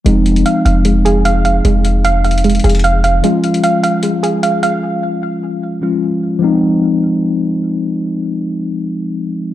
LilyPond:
<<
  \new Staff \with { instrumentName = "Synth pluck" } { \time 4/4 \key f \minor \tempo 4 = 151 aes4 f''8 f''8 aes8 aes'8 f''8 f''8 | aes4 f''8 f''8 aes8 aes'8 f''8 f''8 | aes4 f''8 f''8 aes8 aes'8 f''8 f''8~ | f''2~ f''8 r4. |
r1 | r1 | }
  \new Staff \with { instrumentName = "Tine electric piano" } { \time 4/4 \key f \minor <f aes c' ees'>1~ | <f aes c' ees'>1 | <f aes des' f'>1~ | <f aes des' f'>2~ <f aes des' f'>8 <f aes des' f'>4. |
<f aes c' ees'>1~ | <f aes c' ees'>1 | }
  \new Staff \with { instrumentName = "808-style bass" } { \clef bass \time 4/4 \key f \minor f,,4 r8 f,,2~ f,,8 | f,,2~ f,,8 f,,4. | r1 | r1 |
r1 | r1 | }
  \new DrumStaff \with { instrumentName = "Drums" } \drummode { \time 4/4 hh8 hh16 hh16 hh8 hh8 hh8 hh8 hh8 hh8 | hh8 hh8 \tuplet 3/2 { hh16 r16 r16 hh16 hh16 hh16 } hh32 hh32 hh32 hh32 hh32 hh32 hh32 hh32 hh8 hh8 | hh8 hh16 hh16 hh8 hh8 hh8 hh8 hh8 hh8 | r4 r4 r4 r4 |
r4 r4 r4 r4 | r4 r4 r4 r4 | }
>>